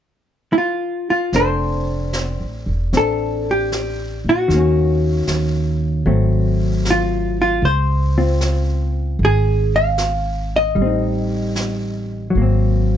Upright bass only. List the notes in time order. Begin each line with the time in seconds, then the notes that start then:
1.33 F1
2.40 A1
2.66 E1
2.93 A1
4.24 A#2
4.49 D#2
5.27 D#2
6.05 G#1
7.62 C#2
9.19 G#1
10.76 A1
12.35 G#1